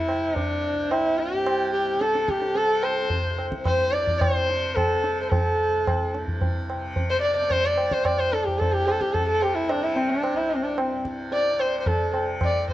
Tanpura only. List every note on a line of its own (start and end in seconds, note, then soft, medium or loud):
0.00 0.72 C2 medium
0.00 1.34 G2 medium
0.00 0.12 C3 medium
0.12 1.95 C3 medium
0.73 3.13 C2 medium
1.34 3.75 G2 medium
1.95 2.54 C3 medium
2.54 4.35 C3 medium
3.13 5.54 C2 medium
3.75 6.14 G2 medium
4.35 4.94 C3 medium
4.94 6.73 C3 medium
5.54 7.95 C2 medium
6.15 8.55 G2 medium
6.73 7.33 C3 medium
7.33 9.14 C3 medium
7.96 10.32 C2 medium
8.55 10.93 G2 medium
9.14 9.74 C3 medium
9.74 11.53 C3 medium
10.33 12.71 C2 medium
10.94 12.73 G2 medium
11.53 12.11 C3 medium
12.11 12.73 C3 medium